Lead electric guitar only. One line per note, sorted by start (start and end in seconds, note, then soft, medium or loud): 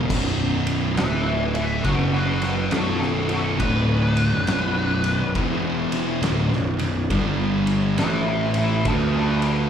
0.99 1.25 B4 medium
0.99 1.26 E5 loud
1.26 1.54 B4 medium
1.26 1.55 E5 medium
1.55 1.83 B4 medium
1.55 1.84 E5 medium
1.84 2.12 F#4 medium
1.84 2.13 B4 medium
2.14 2.41 F#4 medium
2.14 2.43 B4 medium
2.44 2.71 F#4 medium
2.44 2.72 B4 medium
2.72 3.00 F#4 medium
2.72 2.99 A4 medium
3.00 3.28 F#4 medium
3.00 3.29 A4 medium
3.29 3.57 F#4 medium
3.29 3.59 A4 medium
3.59 5.31 B4 medium
7.99 8.27 B4 loud
7.99 8.27 E5 loud
8.28 8.55 B4 medium
8.28 8.57 E5 medium
8.58 8.85 B4 medium
8.58 8.86 E5 medium
8.88 9.14 D4 medium
8.88 9.16 B4 medium
9.16 9.43 D4 medium
9.16 9.45 B4 loud
9.46 9.70 D4 medium
9.46 9.70 B4 medium